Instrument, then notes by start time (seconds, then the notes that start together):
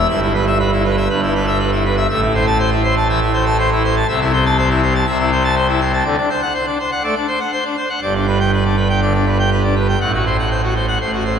pipe organ
0.09 G1 G2 E5
0.21 E4
0.34 B4
0.47 E5
0.60 B4
0.72 E4
0.84 B4
0.97 E5
1.09 G1 G2 B4
1.23 E4
1.35 B4
1.47 E5
1.59 B4
1.72 E4
1.85 B4
1.97 E5
2.09 A1 A2 E5
2.22 E4
2.34 C5
2.46 A5
2.59 C5
2.71 E4
2.83 C5
2.96 A5
3.09 E3 E5
3.21 E4
3.33 C5
3.46 A5
3.59 C5
3.72 E4
3.84 C5
3.96 A5
4.08 C2 C3 E5
4.21 E4
4.33 C5
4.46 A5
4.58 C5
4.70 E4
4.82 C5
4.95 A5
5.07 C2 C3 E5
5.19 E4
5.32 C5
5.44 A5
5.56 C5
5.68 E4
5.80 C5
5.93 A5
6.05 D2 D3 D5
6.18 D4
6.29 C5
6.42 F#5
6.54 C5
6.67 D4
6.79 C5
6.91 F#5
7.03 A3 D5
7.15 D4
7.27 C5
7.40 F#5
7.52 C5
7.64 D4
7.77 C5
7.89 F#5
8.02 G1 G2 D5
8.14 D4
8.27 B4
8.40 G5
8.53 B4
8.65 D4
8.77 B4
8.89 G5
9.02 D3 D5
9.14 D4
9.27 B4
9.39 G5
9.52 B4
9.63 D4
9.76 B4
9.88 G5
10.01 A1 A2 F#5
10.14 F#4
10.26 C5
10.39 F#5
10.51 C5
10.63 F#4
10.75 C5
10.88 F#5
11.01 A1 A2 C5
11.13 F#4
11.25 C5